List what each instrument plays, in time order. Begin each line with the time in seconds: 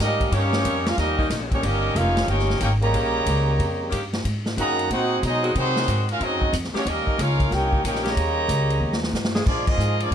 0.00 upright bass G#2, trombone section G3 A#3 D#4, trumpet section C#4 G4 A#4 D#5
0.20 kick, ride
0.32 upright bass G2, saxophone section D#3 A#3 C#4 G4, trombone section G3 A#3 C#4, trumpet section A#3 D#4 G4 C#5, kick, ride
0.53 snare
0.65 upright bass F2, kick, hi-hat pedal, ride
0.86 trumpet section C#4 G4 A#4 F5, trombone section F4, snare, ride
0.97 upright bass D#2, trombone section G3 A#3 D#4, trumpet section C#4 G4 A#4 D#5, kick, snare, ride
1.18 saxophone section D#3 A#3 C#4 D#4, kick
1.30 upright bass A#1, kick, snare, hi-hat pedal, ride
1.51 trombone section G3 A#3 C#4, trumpet section A#3 D#4 G4 C#5, kick, ride
1.63 upright bass G1, saxophone section D#3 A#3 C#4 G4, trombone section G3 A#3 D#4, trumpet section C#4 G4 A#4 D#5, kick, ride
1.95 upright bass F1, trombone section A#3 C#4 F4, trumpet section D#4 A#4 C#5 F5, kick, hi-hat pedal, ride
2.17 snare, ride
2.28 upright bass G1, trombone section A#3 C#4 G4, trumpet section D#4 A#4 C#5 G5, kick, ride
2.39 snare
2.50 snare
2.60 upright bass G#1, trombone section A#3 C#4 G4, trumpet section D#4 A#4 C#5 G5, kick, hi-hat pedal, ride
2.81 trombone section C#3 G3 A#3, trumpet section G4 C#5 D#5 A#5, ride
2.93 upright bass A#1, saxophone section D#3 A#3 C#4 G4, kick, ride
3.26 upright bass C#2, kick, hi-hat pedal, ride
3.59 upright bass F2, kick, ride
3.90 upright bass G2, saxophone section D#3 A#3 C#4 G4, kick, hi-hat pedal, ride
4.13 snare, ride
4.25 upright bass G#2, kick, ride
4.46 snare
4.56 upright bass F#2, saxophone section D#3 G#3 C4 F#4, trombone section D#3 F#3 A#3, trumpet section G#4 A#5, kick, hi-hat pedal, ride
4.60 trumpet section D#5 F#5
4.79 ride
4.90 upright bass A#2, trombone section C4 D#4 F#4, trumpet section D#4 G#4 C5 F#5, kick, ride
5.23 upright bass B2, trombone section F#3 G#3 D#4, trumpet section G#4 C5 D#5, kick, hi-hat pedal, ride
5.27 trumpet section F#4
5.43 saxophone section D#3 G#3 C4 F#4, ride
5.55 upright bass C3, trombone section D#3 F#3 C4, trumpet section G#3 D#4 F#4 C5, kick, ride
5.76 snare
5.88 upright bass G#2, kick, hi-hat pedal, ride
6.09 trumpet section C#4 F#4 A#4 F5, trombone section F4, ride
6.20 upright bass F#2, trombone section F#3 C4 D#4, trumpet section C4 F#4 G#4 D#5, kick, ride
6.41 kick
6.53 upright bass F2, kick, hi-hat pedal, ride
6.64 snare
6.73 saxophone section D#3 A#3 C#4 G4, trumpet section A#3 D#4 F#4 C#5, trombone section C#4, muted upright bass stroke, snare
6.85 upright bass D#2, trombone section G3 A#3 D#4, trumpet section C#4 G4 A#4 D#5, kick, ride
7.06 muted upright bass stroke, kick
7.18 upright bass C#2, trombone section A#3 C#4 F4, trumpet section D#4 A#4 C#5 F5, kick, hi-hat pedal, ride
7.40 kick, ride
7.51 upright bass C2, trombone section A#3 C#4 G4, trumpet section D#4 A#4 C#5 G5, kick, snare, ride
7.72 kick
7.84 upright bass A#1, trombone section A#3 C#4 G4, trumpet section D#4 A#4 C#5 G5, kick, hi-hat pedal, ride
7.95 snare
8.03 trombone section C#3 G3 A#3, saxophone section D#3 A#3 C#4 G4, trumpet section G4 C#5 D#5 A#5, snare, ride
8.16 upright bass D#2, kick, ride
8.48 upright bass C#2, kick, hi-hat pedal, ride
8.70 ride
8.80 upright bass D#2
8.93 snare
9.03 snare
9.12 upright bass G2, snare, hi-hat pedal
9.25 snare
9.35 saxophone section F3 A#3 D4 G#4, snare
9.46 upright bass A#2, trombone section F3 G#3 D4, trumpet section A#3 F4 G#4 D5, kick, crash
9.67 trombone section F3 G#3 D#4, trumpet section A#3 F4 G#4 D#5, kick, crash
9.78 upright bass G#2, hi-hat pedal
10.00 trombone section F3 G#3 D4, trumpet section A#3 F4 G#4 D5, ride
10.11 upright bass G2, trombone section G#4